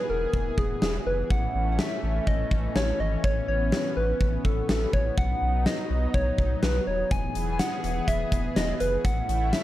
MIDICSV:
0, 0, Header, 1, 5, 480
1, 0, Start_track
1, 0, Tempo, 483871
1, 1295, Time_signature, 4, 2, 24, 8
1, 9557, End_track
2, 0, Start_track
2, 0, Title_t, "Soft synth lead"
2, 0, Program_c, 0, 80
2, 97, Note_on_c, 0, 70, 93
2, 577, Note_on_c, 0, 68, 88
2, 592, Note_off_c, 0, 70, 0
2, 812, Note_off_c, 0, 68, 0
2, 818, Note_on_c, 0, 68, 86
2, 925, Note_off_c, 0, 68, 0
2, 1058, Note_on_c, 0, 71, 85
2, 1280, Note_off_c, 0, 71, 0
2, 1298, Note_on_c, 0, 78, 101
2, 1707, Note_off_c, 0, 78, 0
2, 1707, Note_on_c, 0, 78, 72
2, 1778, Note_on_c, 0, 76, 97
2, 1793, Note_off_c, 0, 78, 0
2, 2257, Note_on_c, 0, 75, 104
2, 2272, Note_off_c, 0, 76, 0
2, 2738, Note_on_c, 0, 73, 94
2, 2753, Note_off_c, 0, 75, 0
2, 2977, Note_on_c, 0, 75, 93
2, 2992, Note_off_c, 0, 73, 0
2, 3217, Note_on_c, 0, 73, 100
2, 3232, Note_off_c, 0, 75, 0
2, 3449, Note_off_c, 0, 73, 0
2, 3455, Note_on_c, 0, 73, 101
2, 3901, Note_off_c, 0, 73, 0
2, 3935, Note_on_c, 0, 71, 97
2, 4381, Note_off_c, 0, 71, 0
2, 4415, Note_on_c, 0, 69, 91
2, 4638, Note_off_c, 0, 69, 0
2, 4654, Note_on_c, 0, 69, 93
2, 4896, Note_on_c, 0, 73, 96
2, 4911, Note_off_c, 0, 69, 0
2, 5135, Note_on_c, 0, 78, 110
2, 5150, Note_off_c, 0, 73, 0
2, 5608, Note_off_c, 0, 78, 0
2, 5614, Note_on_c, 0, 75, 101
2, 6093, Note_on_c, 0, 73, 109
2, 6108, Note_off_c, 0, 75, 0
2, 6574, Note_on_c, 0, 71, 99
2, 6589, Note_off_c, 0, 73, 0
2, 6811, Note_off_c, 0, 71, 0
2, 6817, Note_on_c, 0, 73, 97
2, 7057, Note_on_c, 0, 80, 111
2, 7072, Note_off_c, 0, 73, 0
2, 7465, Note_off_c, 0, 80, 0
2, 7465, Note_on_c, 0, 80, 76
2, 7534, Note_on_c, 0, 78, 105
2, 7549, Note_off_c, 0, 80, 0
2, 8008, Note_off_c, 0, 78, 0
2, 8014, Note_on_c, 0, 76, 105
2, 8495, Note_on_c, 0, 75, 100
2, 8510, Note_off_c, 0, 76, 0
2, 8734, Note_on_c, 0, 71, 94
2, 8749, Note_off_c, 0, 75, 0
2, 8975, Note_on_c, 0, 78, 112
2, 8990, Note_off_c, 0, 71, 0
2, 9456, Note_on_c, 0, 76, 99
2, 9470, Note_off_c, 0, 78, 0
2, 9557, Note_off_c, 0, 76, 0
2, 9557, End_track
3, 0, Start_track
3, 0, Title_t, "Analog synth pad"
3, 0, Program_c, 1, 89
3, 0, Note_on_c, 1, 52, 75
3, 0, Note_on_c, 1, 59, 78
3, 0, Note_on_c, 1, 68, 85
3, 1255, Note_off_c, 1, 59, 0
3, 1275, Note_off_c, 1, 68, 0
3, 1295, Note_on_c, 1, 57, 71
3, 1295, Note_on_c, 1, 61, 84
3, 3196, Note_off_c, 1, 57, 0
3, 3214, Note_on_c, 1, 59, 72
3, 5095, Note_off_c, 1, 52, 0
3, 5097, Note_off_c, 1, 61, 0
3, 5133, Note_on_c, 1, 54, 75
3, 5133, Note_on_c, 1, 63, 87
3, 7016, Note_off_c, 1, 59, 0
3, 7035, Note_off_c, 1, 54, 0
3, 7035, Note_off_c, 1, 63, 0
3, 7055, Note_on_c, 1, 52, 78
3, 7055, Note_on_c, 1, 59, 71
3, 7056, Note_on_c, 1, 68, 86
3, 8956, Note_off_c, 1, 52, 0
3, 8956, Note_off_c, 1, 59, 0
3, 8956, Note_off_c, 1, 68, 0
3, 8974, Note_on_c, 1, 64, 85
3, 8975, Note_on_c, 1, 61, 74
3, 8976, Note_on_c, 1, 57, 80
3, 9557, Note_off_c, 1, 57, 0
3, 9557, Note_off_c, 1, 61, 0
3, 9557, Note_off_c, 1, 64, 0
3, 9557, End_track
4, 0, Start_track
4, 0, Title_t, "Sub bass"
4, 0, Program_c, 2, 38
4, 94, Note_on_c, 2, 28, 100
4, 262, Note_off_c, 2, 28, 0
4, 333, Note_on_c, 2, 28, 104
4, 501, Note_off_c, 2, 28, 0
4, 572, Note_on_c, 2, 28, 102
4, 741, Note_off_c, 2, 28, 0
4, 813, Note_on_c, 2, 28, 99
4, 981, Note_off_c, 2, 28, 0
4, 1053, Note_on_c, 2, 30, 90
4, 1222, Note_off_c, 2, 30, 0
4, 1295, Note_on_c, 2, 33, 114
4, 1463, Note_off_c, 2, 33, 0
4, 1534, Note_on_c, 2, 33, 100
4, 1787, Note_off_c, 2, 33, 0
4, 2013, Note_on_c, 2, 33, 101
4, 2182, Note_off_c, 2, 33, 0
4, 2253, Note_on_c, 2, 33, 102
4, 2422, Note_off_c, 2, 33, 0
4, 2492, Note_on_c, 2, 33, 97
4, 2661, Note_off_c, 2, 33, 0
4, 2731, Note_on_c, 2, 33, 98
4, 2901, Note_off_c, 2, 33, 0
4, 2972, Note_on_c, 2, 32, 93
4, 3141, Note_off_c, 2, 32, 0
4, 3214, Note_on_c, 2, 33, 114
4, 3383, Note_off_c, 2, 33, 0
4, 3453, Note_on_c, 2, 33, 93
4, 3705, Note_off_c, 2, 33, 0
4, 3933, Note_on_c, 2, 33, 91
4, 4102, Note_off_c, 2, 33, 0
4, 4173, Note_on_c, 2, 33, 102
4, 4342, Note_off_c, 2, 33, 0
4, 4413, Note_on_c, 2, 33, 99
4, 4581, Note_off_c, 2, 33, 0
4, 4652, Note_on_c, 2, 33, 99
4, 4821, Note_off_c, 2, 33, 0
4, 4895, Note_on_c, 2, 33, 100
4, 5063, Note_off_c, 2, 33, 0
4, 5134, Note_on_c, 2, 35, 104
4, 5302, Note_off_c, 2, 35, 0
4, 5373, Note_on_c, 2, 35, 103
4, 5625, Note_off_c, 2, 35, 0
4, 5854, Note_on_c, 2, 35, 98
4, 6022, Note_off_c, 2, 35, 0
4, 6093, Note_on_c, 2, 35, 103
4, 6262, Note_off_c, 2, 35, 0
4, 6333, Note_on_c, 2, 35, 95
4, 6502, Note_off_c, 2, 35, 0
4, 6574, Note_on_c, 2, 35, 104
4, 6743, Note_off_c, 2, 35, 0
4, 6814, Note_on_c, 2, 27, 93
4, 6983, Note_off_c, 2, 27, 0
4, 7055, Note_on_c, 2, 28, 114
4, 7223, Note_off_c, 2, 28, 0
4, 7294, Note_on_c, 2, 28, 97
4, 7547, Note_off_c, 2, 28, 0
4, 7774, Note_on_c, 2, 28, 102
4, 7943, Note_off_c, 2, 28, 0
4, 8012, Note_on_c, 2, 28, 106
4, 8181, Note_off_c, 2, 28, 0
4, 8253, Note_on_c, 2, 28, 101
4, 8422, Note_off_c, 2, 28, 0
4, 8494, Note_on_c, 2, 28, 103
4, 8662, Note_off_c, 2, 28, 0
4, 8734, Note_on_c, 2, 30, 88
4, 8902, Note_off_c, 2, 30, 0
4, 8975, Note_on_c, 2, 33, 104
4, 9143, Note_off_c, 2, 33, 0
4, 9213, Note_on_c, 2, 33, 102
4, 9466, Note_off_c, 2, 33, 0
4, 9557, End_track
5, 0, Start_track
5, 0, Title_t, "Drums"
5, 332, Note_on_c, 9, 36, 87
5, 432, Note_off_c, 9, 36, 0
5, 573, Note_on_c, 9, 36, 94
5, 672, Note_off_c, 9, 36, 0
5, 813, Note_on_c, 9, 38, 104
5, 912, Note_off_c, 9, 38, 0
5, 1294, Note_on_c, 9, 36, 109
5, 1393, Note_off_c, 9, 36, 0
5, 1773, Note_on_c, 9, 38, 109
5, 1872, Note_off_c, 9, 38, 0
5, 2253, Note_on_c, 9, 36, 89
5, 2352, Note_off_c, 9, 36, 0
5, 2493, Note_on_c, 9, 36, 93
5, 2592, Note_off_c, 9, 36, 0
5, 2734, Note_on_c, 9, 38, 105
5, 2833, Note_off_c, 9, 38, 0
5, 3214, Note_on_c, 9, 36, 109
5, 3313, Note_off_c, 9, 36, 0
5, 3694, Note_on_c, 9, 38, 109
5, 3793, Note_off_c, 9, 38, 0
5, 4173, Note_on_c, 9, 36, 88
5, 4272, Note_off_c, 9, 36, 0
5, 4413, Note_on_c, 9, 36, 93
5, 4512, Note_off_c, 9, 36, 0
5, 4653, Note_on_c, 9, 38, 109
5, 4752, Note_off_c, 9, 38, 0
5, 4895, Note_on_c, 9, 36, 86
5, 4994, Note_off_c, 9, 36, 0
5, 5134, Note_on_c, 9, 36, 112
5, 5234, Note_off_c, 9, 36, 0
5, 5614, Note_on_c, 9, 38, 107
5, 5714, Note_off_c, 9, 38, 0
5, 6093, Note_on_c, 9, 36, 89
5, 6192, Note_off_c, 9, 36, 0
5, 6333, Note_on_c, 9, 36, 91
5, 6433, Note_off_c, 9, 36, 0
5, 6573, Note_on_c, 9, 38, 107
5, 6673, Note_off_c, 9, 38, 0
5, 7054, Note_on_c, 9, 36, 109
5, 7054, Note_on_c, 9, 42, 73
5, 7153, Note_off_c, 9, 42, 0
5, 7154, Note_off_c, 9, 36, 0
5, 7294, Note_on_c, 9, 42, 70
5, 7393, Note_off_c, 9, 42, 0
5, 7533, Note_on_c, 9, 38, 111
5, 7533, Note_on_c, 9, 42, 76
5, 7632, Note_off_c, 9, 38, 0
5, 7633, Note_off_c, 9, 42, 0
5, 7777, Note_on_c, 9, 42, 74
5, 7876, Note_off_c, 9, 42, 0
5, 8013, Note_on_c, 9, 36, 87
5, 8017, Note_on_c, 9, 42, 65
5, 8112, Note_off_c, 9, 36, 0
5, 8117, Note_off_c, 9, 42, 0
5, 8253, Note_on_c, 9, 42, 76
5, 8254, Note_on_c, 9, 36, 94
5, 8352, Note_off_c, 9, 42, 0
5, 8353, Note_off_c, 9, 36, 0
5, 8495, Note_on_c, 9, 38, 105
5, 8497, Note_on_c, 9, 42, 70
5, 8594, Note_off_c, 9, 38, 0
5, 8596, Note_off_c, 9, 42, 0
5, 8733, Note_on_c, 9, 42, 74
5, 8832, Note_off_c, 9, 42, 0
5, 8975, Note_on_c, 9, 36, 109
5, 8975, Note_on_c, 9, 42, 70
5, 9074, Note_off_c, 9, 36, 0
5, 9074, Note_off_c, 9, 42, 0
5, 9217, Note_on_c, 9, 42, 75
5, 9316, Note_off_c, 9, 42, 0
5, 9453, Note_on_c, 9, 38, 109
5, 9453, Note_on_c, 9, 42, 74
5, 9552, Note_off_c, 9, 38, 0
5, 9552, Note_off_c, 9, 42, 0
5, 9557, End_track
0, 0, End_of_file